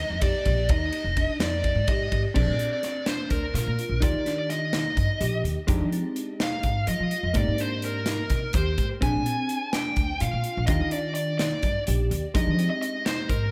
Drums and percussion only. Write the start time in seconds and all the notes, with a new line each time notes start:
0.21 kick, ride
0.45 kick, ride
0.69 kick, ride
0.93 ride
1.17 kick, ride
1.40 snare, ride
1.64 kick, ride
1.88 kick, ride
2.12 kick, ride
2.35 kick, crash
2.59 closed hi-hat
2.83 snare, closed hi-hat
3.06 snare, closed hi-hat
3.30 kick, closed hi-hat
3.55 snare, closed hi-hat
3.79 closed hi-hat
4.02 kick, closed hi-hat
4.26 snare, closed hi-hat
4.50 snare, closed hi-hat
4.73 snare, closed hi-hat
4.97 kick, closed hi-hat
5.21 closed hi-hat
5.45 closed hi-hat
5.68 kick, closed hi-hat
5.92 closed hi-hat
6.16 closed hi-hat
6.40 snare, closed hi-hat
6.63 kick, closed hi-hat
6.87 closed hi-hat
7.11 closed hi-hat
7.34 kick, closed hi-hat
7.58 closed hi-hat
7.82 closed hi-hat
8.06 snare, closed hi-hat
8.30 kick, snare, closed hi-hat
8.53 kick, closed hi-hat
8.78 kick, closed hi-hat
9.02 kick, closed hi-hat
9.26 closed hi-hat
9.49 closed hi-hat
9.73 snare, closed hi-hat
9.96 kick, closed hi-hat
10.20 closed hi-hat
10.44 closed hi-hat
10.67 kick, closed hi-hat
10.91 closed hi-hat
11.15 closed hi-hat
11.39 snare, closed hi-hat
11.63 kick, closed hi-hat
11.87 closed hi-hat
12.11 closed hi-hat
12.35 kick, closed hi-hat
12.59 closed hi-hat
12.82 closed hi-hat
13.06 snare, closed hi-hat
13.29 kick, closed hi-hat